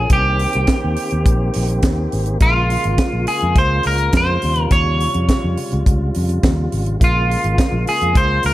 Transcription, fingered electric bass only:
0.10 C2
0.55 C2
0.84 D#2
1.12 D#2
1.26 A#1
1.56 A#1
1.83 D#2
2.13 G#1
2.41 A#1
2.85 G#1
3.13 A#1
3.43 F2
3.56 C#2
3.86 C#2
4.13 F2
4.43 D#2
4.71 D#2
5.15 F2
5.44 F2
5.73 C#2
5.87 C#2
6.16 F2
6.44 D#2
6.72 G#1
7.01 A#1
7.44 G#1
7.73 A#1
8.02 F2
8.16 C#2
8.44 C#2

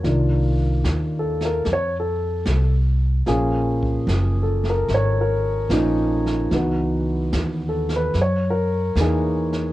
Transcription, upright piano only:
0.03 D#3 A#3 D4 F4
1.19 A4
1.45 A#4
1.73 C#5
2.00 A4
3.27 F3 A#3 C#4 G#4
4.43 A4
4.70 A#4
4.94 C#5
5.21 A#4
5.71 F3 A#3 C#4 D#4
6.53 E3 B3 D#4 F#4
7.69 A4
7.96 B4
8.21 C#5
8.50 A#4
8.99 E3 A#3 D#4 G#4

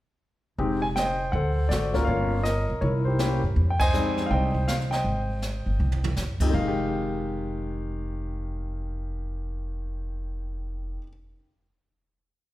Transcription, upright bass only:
0.58 F1
1.33 D2
1.70 G#1
2.07 G1
2.70 B1
2.82 C2
3.43 F#2
3.56 F2
4.31 C2
5.04 G#1
5.66 G1
5.80 C2
6.17 F#2
6.53 F1

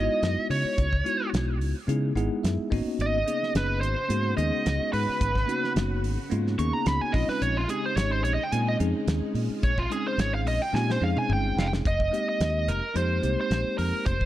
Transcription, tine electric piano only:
Already playing: G#3 B3 D#4 E4 F#4
1.04 G#3 B3 D#4 E4 F#4
1.87 G#3 B3 D#4 E4 G#4
2.15 G#3 B3 D#4 E4 G#4 F#5
2.43 E5
2.70 A#3 B3 C#4 D#4 F#4 D#5
3.26 A#3 B3 C#4 D#4 G#4
4.08 A#3 B3 C#4 D#4 F#4
4.36 G#3 B3 C#4 D#4 G#4
5.46 A#3 B3 C#4 D#4 F#4
6.30 A#3 B3 C#4 D#4 F4
6.58 A#3 B3 C#4 D#4 G#4
7.13 G#3 C4 C#4 D#4 F4
7.68 G#3 C4 C#4 D#4 G4
8.52 G#3 C4 C#4 D#4 F4
8.79 G#3 C4 C#4 D#4 G#4
9.90 G#3 C4 C#4 D#4 G#4
10.73 G#3 C4 C#4 D#4 G4
11.00 G#3 C4 C#4 D#4 G#4
12.11 G#3 A#3 C4 D#4 G4
12.94 G#3 A#3 C4 D#4 G4
13.21 G#3 A#3 C4 D#4 G4

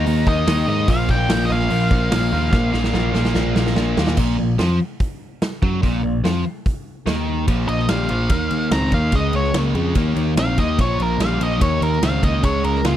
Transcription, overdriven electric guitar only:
0.07 D#3 A#3 D#4
0.27 D#3 A#3 D#4
0.47 D#3 A#3 D#4
0.68 D#3 A#3 D#4
0.88 A#2 F3 A#3
1.09 A#2 F3 A#3
1.28 A#2 F3 A#3
1.50 A#2 F3 A#3
1.70 A#2 F3 A#3
1.91 A#2 F3 A#3
2.12 A#2 F3 A#3
2.32 A#2 F3 A#3
2.51 A#2 F3 A#3
2.72 A#2 F3 A#3
2.93 A#2 F3 A#3
3.13 A#2 F3 A#3
3.34 A#2 F3 A#3
3.55 A#2 F3 A#3
3.76 A#2 F3 A#3
3.98 A#2 F3 A#3
4.18 A#2
4.39 A#2
4.59 F3
5.63 F#3
5.82 A#2
6.03 A#2
6.24 F3
7.06 D#3
7.47 A#2 F3
7.89 A#2 G3
8.10 A#2 F3
8.31 D#3 A#3
8.72 D#3 C4
8.93 D#3 A#3
9.13 C#3 G#3
9.55 C#3 A#3
9.75 C#3 G#3
9.96 D#3 A#3
10.37 D#3 C4
10.58 D#3 A#3
10.79 A#2 F3
11.20 A#2 G3
11.40 A#2 F3
11.61 D#3 A#3
12.03 D#3 C4
12.23 D#3 A#3
12.43 C#3 G#3
12.86 C#3 A#3

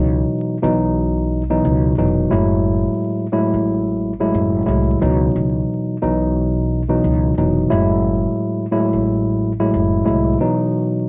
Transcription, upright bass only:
Already playing: C#2
0.64 B1
1.65 C#2
1.98 F1
2.32 F#1
3.54 A1
4.34 F#1
4.68 C2
5.02 C#2
5.36 C#2
6.03 B1
7.04 C#2
7.38 F1
7.71 F#1
8.93 A1
9.74 F#1
10.07 C2

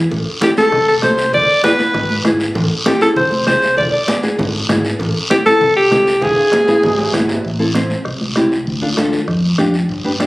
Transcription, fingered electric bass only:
0.11 A1
0.72 C2
1.02 C2
1.33 E1
1.94 G#1
2.25 G#1
2.55 A1
3.16 C2
3.47 C2
3.77 E1
4.38 G#1
4.69 G#1
5.00 A1
5.61 C2
5.92 C2
6.22 E1
6.83 G#1
7.13 G#1
7.44 A1
8.05 C2
8.36 C2
8.67 D2
9.28 F2
9.59 F2
9.89 G1

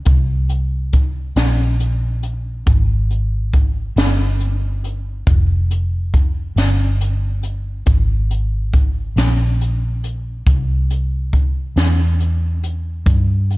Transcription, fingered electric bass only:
0.06 C2
1.36 A#1
2.66 G#1
3.96 G1
5.27 F1
6.56 G1
7.86 G#1
9.16 A#1
10.47 C2
11.76 E2
13.06 G2

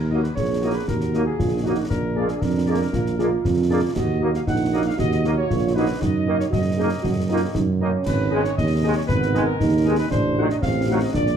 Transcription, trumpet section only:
Already playing: A#4
0.22 B4
0.35 C#5
0.73 B4
0.87 A#4
1.26 G#4
1.63 F#4
1.90 A#4
2.29 G#4
2.41 A#4
3.95 D#5
4.35 F5
4.48 F#5
4.87 F5
4.99 D#5
5.37 C#5
5.75 B4
6.00 D#5
6.38 C#5
6.51 D#5
8.05 B4
8.44 C#5
8.57 D#5
8.96 C#5
9.07 B4
9.45 A#4
9.98 B4
10.10 C5
10.51 D#5
10.63 F5
11.02 D#5
11.14 D5

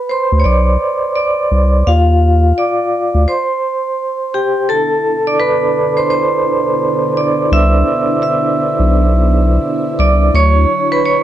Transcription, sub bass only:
0.32 D2
0.45 B1
1.51 C2
1.87 D#2
3.14 D2
7.52 C2
8.79 B1
9.99 C2
10.34 D2

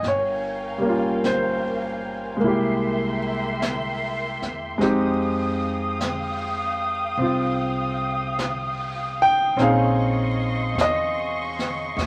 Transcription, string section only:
Already playing: G#5
0.02 A#4 F5 G5
2.42 A#4 E5 G5 C6
4.80 F5 G5 D#6
9.56 D#5 C6 C#6
11.96 G4 E5 D#6

